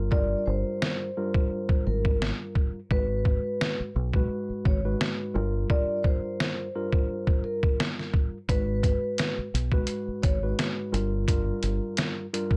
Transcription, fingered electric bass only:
Already playing: G1
0.47 G1
1.87 G#1
2.91 G#1
3.80 muted fingered electric bass stroke
3.96 B1
4.50 muted fingered electric bass stroke
4.65 G#1
5.35 G1
8.49 G#1
9.38 muted fingered electric bass stroke
9.54 B1
10.08 muted fingered electric bass stroke
10.24 G#1
10.93 G1
11.63 G1

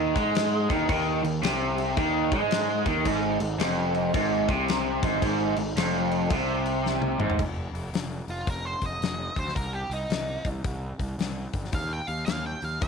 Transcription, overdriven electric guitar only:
Already playing: D#3
0.15 G#3
0.69 D#3
0.89 D#3
1.23 D#3
1.42 C3
1.97 D#3
2.31 G#3
2.85 D#3
3.05 G#2
3.40 G#2
3.59 F2
4.14 G#2
4.49 C3
5.04 G#2
5.23 G#2
5.57 G#2
5.77 F2
6.31 C3
7.20 G#2

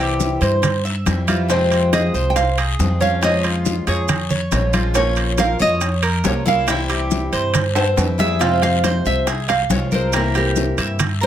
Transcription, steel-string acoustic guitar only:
Already playing: C3 E3 G3 C4 E4
0.62 muted steel-string acoustic guitar stroke
1.05 E3 G3 C4 E4
1.27 E3 G3 C4 E4
1.48 C3 F3 G#3 C4 F4
2.36 muted steel-string acoustic guitar stroke
2.79 F3 G#3 C4 F4
3.00 F3 G#3 C4 F4
3.21 C#3 F3 G#3 C#4 F4
4.08 muted steel-string acoustic guitar stroke
4.51 F3 G#3 C#4 F4
4.73 F3 G#3 C#4 F4
4.94 F3 A#3 C#4 F4
5.81 muted steel-string acoustic guitar stroke
6.24 F3 A#3 C#4 F4
6.45 A#3 C#4 F4
6.67 C3 E3 G3 C4 E4
7.54 muted steel-string acoustic guitar stroke
7.96 E3 G3 C4 E4
8.18 E3 G3 C4 E4
8.39 C3 F3 G#3 C4 F4
9.27 muted steel-string acoustic guitar stroke
9.70 F3 G#3 C4 F4
9.91 F3 G#3 C4 F4
10.12 C3 E3 A#3 C4 E4
10.99 muted steel-string acoustic guitar stroke

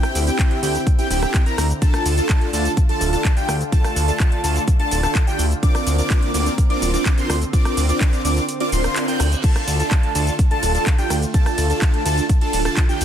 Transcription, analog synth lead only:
Already playing: G5
0.27 G5
0.63 G5
0.99 G5
1.11 G5
1.46 A#5
1.82 A5
2.18 A5
2.53 A5
2.89 A5
3.13 A5
3.37 G5
3.72 A5
4.08 A5
4.44 A5
4.79 A5
5.03 A5
5.27 G5
5.63 D6
5.99 D6
6.34 D6
6.70 D6
6.94 D6
7.18 C6
7.53 D6
7.89 D6
8.25 D6
8.61 D6
8.72 C6
9.08 G6
9.44 A5
9.80 A5
10.15 A5
10.51 A5
10.75 A5
10.98 G5
11.34 A5
11.70 A5
12.06 A5
12.41 A5
12.65 A5
12.89 G5

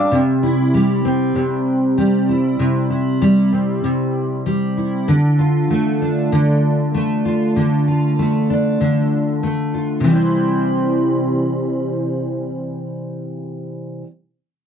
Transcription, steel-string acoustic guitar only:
Already playing: G3 D4 G4
0.11 C3
0.43 E4
0.74 G3
1.05 C4
1.35 C3
1.98 G3
2.29 E4
2.59 C3
2.90 E4
3.22 G3
3.52 C4
3.84 C3
4.46 G3
4.77 E4
5.08 D3
5.39 F4
5.70 A3
6.01 D4
6.32 D3
6.94 A3
7.25 F4
7.56 D3
7.88 F4
8.19 A3
8.50 D4
8.81 D3
9.43 A3
9.74 F4
10.00 C3 E3
10.07 G3 C4
10.13 E4 C5

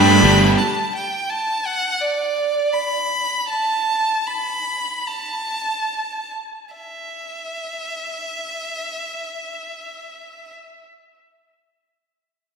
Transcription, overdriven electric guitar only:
Already playing: G3 A3 D4 G4
0.23 G3 A3 D4 G4

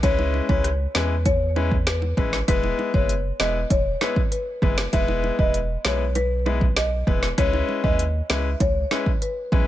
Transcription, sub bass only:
0.03 C#2
0.49 C#2
0.95 E2
2.17 A1
2.48 E1
2.94 F#1
3.40 E1
3.70 E1
4.62 F#1
4.93 E1
5.39 E1
5.85 B1
7.07 E1
7.38 C#2
7.84 D#2
8.30 C#2
8.60 C#2
9.52 B1

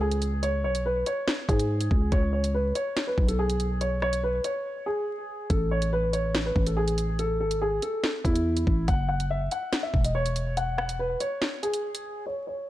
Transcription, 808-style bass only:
Already playing: C#2
0.64 B1
1.49 G#2
1.91 C#2
2.12 C#2
3.18 B1
5.50 A1
6.56 A1
7.40 G#1
8.25 E2
8.67 A1
8.88 F#1
9.94 E1

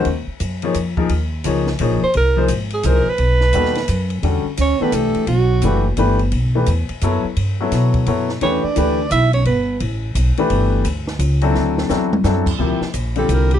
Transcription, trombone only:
4.59 C#4
4.82 B3
4.94 A3
5.28 F#3
8.41 C#4
8.62 D4
9.11 E4
9.33 C#4
9.45 B3

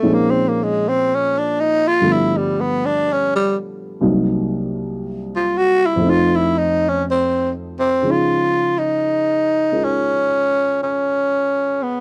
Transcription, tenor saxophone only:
Already playing: A3
0.14 A#3
0.31 C4
0.49 A#3
0.63 G#3
0.88 C4
1.15 C#4
1.38 D4
1.60 D#4
1.88 F4
2.12 E4
2.37 G3
2.60 B3
2.86 D4
3.12 C#4
3.36 G3
5.36 F4
5.57 F#4
5.86 E4
6.10 F4
6.36 E4
6.58 D#4
6.89 C#4
7.11 C4
7.79 C4
8.11 F4
8.79 D#4
9.84 C#4
10.83 C#4
11.82 B3

